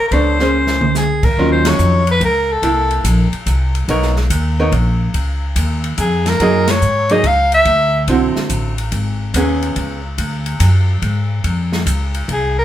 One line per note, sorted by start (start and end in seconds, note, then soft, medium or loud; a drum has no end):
0.08 1.19 C#2 medium
0.08 0.37 B3 soft
0.08 0.14 A#4 soft
0.08 kick soft
0.08 ride soft
0.13 0.37 D4 soft
0.13 0.37 A4 soft
0.13 0.96 C5 medium
0.13 0.38 C#5 medium
0.39 1.29 A#3 soft
0.39 1.30 C#4 medium
0.39 1.30 G#4 soft
0.39 1.30 C5 medium
0.39 snare soft
0.67 snare soft
0.81 mid tom medium
0.95 1.26 G#4 medium
0.95 snare soft
0.95 hi-hat pedal soft
1.23 1.36 D2 medium
1.23 1.51 A#4 medium
1.23 kick medium
1.23 crash medium
1.37 1.78 D#2 medium
1.37 2.02 D#3 medium
1.37 2.02 F#3 medium
1.37 2.03 C#4 medium
1.37 2.03 F4 medium
1.37 kick soft
1.52 1.69 C5 medium
1.65 2.08 C#5 loud
1.65 snare medium
1.65 ride medium
1.79 2.20 F2 medium
1.79 hi-hat pedal medium
2.07 2.22 B4 medium
2.07 ride soft
2.20 2.61 C#2 medium
2.20 kick soft
2.20 ride soft
2.25 2.54 A#4 medium
2.52 3.07 A4 medium
2.62 3.03 C2 medium
2.62 3.27 A#3 medium
2.62 3.28 E4 medium
2.62 3.28 A4 medium
2.62 kick soft
2.62 ride medium
2.91 ride soft
3.04 3.31 A#1 medium
3.04 kick soft
3.04 hi-hat pedal medium
3.04 ride medium
3.32 muted upright bass stroke soft
3.32 ride soft
3.46 3.87 C2 medium
3.46 kick soft
3.46 hi-hat pedal medium
3.46 ride medium
3.75 ride soft
3.88 4.29 B1 medium
3.88 4.14 B3 medium
3.88 4.14 D#4 medium
3.88 4.15 A#4 medium
3.88 4.15 C#5 medium
3.88 kick soft
3.88 ride medium
4.02 snare soft
4.16 snare soft
4.30 4.71 D#2 medium
4.30 kick soft
4.30 hi-hat pedal medium
4.30 ride medium
4.59 4.72 B3 medium
4.59 4.72 D#4 medium
4.59 4.72 A#4 medium
4.59 4.72 C#5 medium
4.72 5.13 A#1 medium
4.72 kick soft
4.72 ride soft
5.14 5.55 C#2 medium
5.14 kick soft
5.14 ride medium
5.56 5.97 D#2 medium
5.56 kick soft
5.56 hi-hat pedal soft
5.56 ride medium
5.84 ride soft
5.98 6.39 F2 medium
5.98 6.30 G#4 medium
5.98 kick soft
5.98 hi-hat pedal soft
5.98 ride medium
6.26 6.72 A#4 medium
6.26 snare medium
6.26 ride soft
6.40 6.81 F#2 medium
6.40 6.66 F#3 medium
6.40 6.66 A#3 medium
6.40 6.66 D#4 medium
6.40 6.66 G#4 medium
6.40 kick soft
6.40 ride medium
6.68 7.14 C#5 medium
6.68 snare medium
6.68 ride medium
6.82 7.23 G#2 medium
6.82 hi-hat pedal soft
7.09 7.23 F#3 medium
7.09 7.23 A#3 medium
7.09 7.23 D#4 medium
7.09 7.24 G#4 medium
7.09 7.28 D#5 medium
7.09 ride soft
7.24 7.65 C#2 medium
7.24 7.54 F5 medium
7.24 kick soft
7.24 ride medium
7.52 8.06 E5 medium
7.52 ride soft
7.65 8.07 D2 medium
7.65 kick soft
7.65 ride medium
8.08 8.34 B1 medium
8.08 8.73 D3 soft
8.08 8.73 C4 medium
8.08 8.74 E4 medium
8.08 8.74 F#4 medium
8.08 kick soft
8.08 ride medium
8.36 muted upright bass stroke soft
8.36 snare soft
8.50 8.91 A1 medium
8.50 kick soft
8.50 hi-hat pedal soft
8.50 ride medium
8.78 ride soft
8.92 9.33 G#1 medium
8.92 kick soft
8.92 ride medium
9.34 9.75 D#2 medium
9.34 10.00 B3 medium
9.34 10.00 C#4 medium
9.34 10.00 G#4 medium
9.34 kick soft
9.34 hi-hat pedal medium
9.34 ride medium
9.62 ride soft
9.76 10.17 C#2 medium
9.76 kick soft
9.76 ride medium
10.18 10.59 D2 medium
10.18 kick soft
10.18 ride medium
10.46 ride soft
10.60 11.01 F#2 medium
10.60 kick soft
10.60 hi-hat pedal soft
10.60 ride medium
11.02 11.43 G#2 medium
11.02 kick soft
11.02 ride soft
11.44 11.85 F2 medium
11.44 kick soft
11.44 ride medium
11.72 snare medium
11.86 12.27 C#2 medium
11.86 kick soft
11.86 hi-hat pedal medium
11.86 ride medium
12.14 ride soft
12.28 12.65 C2 medium
12.28 kick soft
12.28 ride soft
12.33 12.57 G#4 medium
12.59 12.65 A#4 medium